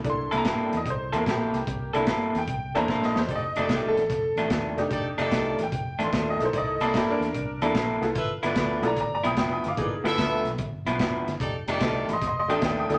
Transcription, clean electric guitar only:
X:1
M:4/4
L:1/8
Q:"Swing" 1/4=148
K:Cmix
V:1 name="Clean electric guitar"
z [C,B,EA] [C,B,EA] z2 [C,B,EA] [C,B,EA] z | z [C,B,EA] [C,B,EA] z2 [C,B,EA] [C,B,EA] z | z [F,,_E,A,D] [F,,E,A,D] z2 [F,,E,A,D] [F,,E,A,D] z | z [F,,_E,A,D] [F,,E,A,D] z2 [F,,E,A,D] [F,,E,A,D] z |
z [C,B,EA] [C,B,EA] z2 [C,B,EA] [C,B,EA] z | z [G,,F,=B,E] [G,,F,B,E] z2 [G,,F,B,E] [G,,F,B,E] z | z [G,,F,=B,E] [G,,F,B,E] z2 [G,,F,B,E] [G,,F,B,E] z | z [F,,_E,A,D] [F,,E,A,D] z2 [F,,E,A,D] [F,,E,A,D] z |]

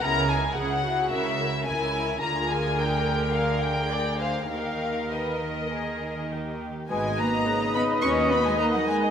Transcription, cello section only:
X:1
M:4/4
L:1/16
Q:1/4=107
K:G#m
V:1 name="Cello section" clef=bass
C,4 C,4 C,4 C,4 | =D,16 | D,12- D,2 z2 | G,2 A,4 B,2 C2 B, G, A, F, G,2 |]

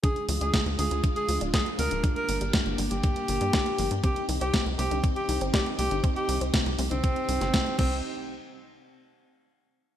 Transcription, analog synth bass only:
X:1
M:4/4
L:1/16
Q:1/4=120
K:Cm
V:1 name="Analog synth bass" clef=bass
z2 D,, D,, z D,, D,, D,, z2 D,, D,,, z2 D,, D,,, | z2 G,,, G,,, z G,,, G,,, G,,, z2 G,,, G,, z2 G,,, G,, | z2 C,, C,, z C,, C,, C,, z2 C,, G,,, z2 C,, G,,, | z2 C,, C,, z C,, C,, C,, z2 C,, G,,, z2 C,,2 |
z16 |]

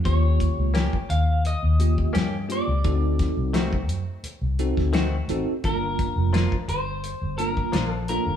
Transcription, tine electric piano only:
X:1
M:4/4
L:1/8
Q:1/4=86
K:Gm
V:1 name="Tine electric piano"
[B,_DFG]3 z2 [B,DFG] z [B,DFG] | [CE^FA]3 z2 [CEFA] z [CEFA] | [B,DFB]3 z2 [B,DFB] z [B,DFA] |]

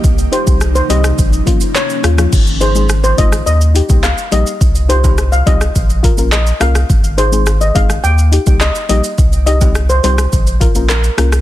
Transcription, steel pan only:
X:1
M:4/4
L:1/16
Q:1/4=105
K:Ab
V:1 name="Steel pan"
z2 c z2 c e z4 z d3 z | z2 c z2 c e z e3 z f z e z | z2 c z2 f e z4 z e z f z | z2 c z2 e f z g3 z e z e z |
z2 e z2 c c z4 z B3 z |]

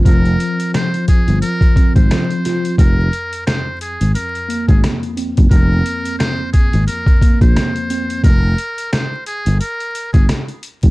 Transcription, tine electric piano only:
X:1
M:4/4
L:1/8
Q:"Swing 16ths" 1/4=88
K:Fm
V:1 name="Tine electric piano" clef=bass
[F,CF]2 F,2 F, C F, F | F,,2 F,,2 F,, B, F,, C | F,,2 F,,2 F,, B, F,, C | z8 |]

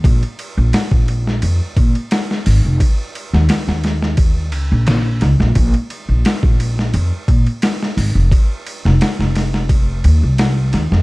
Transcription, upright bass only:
X:1
M:4/4
L:1/16
Q:"Swing 16ths" 1/4=87
K:Bbm
V:1 name="Upright bass" clef=bass
B,,, z2 B,,, z B,,,3 F,, z B,, z3 A,,, F,,, | z3 E,, z E,,4- E,, D,, B,,,3 D,, B,,, | B,,, z2 B,,, z B,,,3 F,, z B,, z3 A,,, F,,, | z3 F,,, z F,,,4- F,,, E,, C,,3 E,, F,, |]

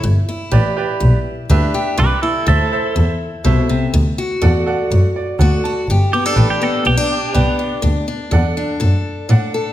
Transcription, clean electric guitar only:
X:1
M:4/4
L:1/16
Q:1/4=123
K:G
V:1 name="Clean electric guitar"
z16 | [GB]2 [EA]2 A4 z8 | z16 | z2 G A2 G A2 G8 |
z16 |]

